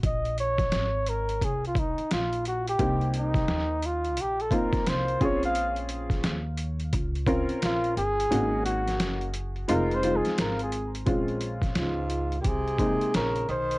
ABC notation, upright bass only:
X:1
M:4/4
L:1/16
Q:"Swing 16ths" 1/4=87
K:Bbm
V:1 name="Upright bass" clef=bass
B,,,4 A,,,4 C,,3 z B,,,4 | C,,4 E,,4 B,,,3 z C,,2 B,,,2- | B,,,4 E,,4 D,,3 z B,,,2 =G,,,2 | A,,,4 G,,,4 F,,,3 z A,,,4 |
B,,,4 D,,4 C,,3 z B,,,2 _C,,2 |]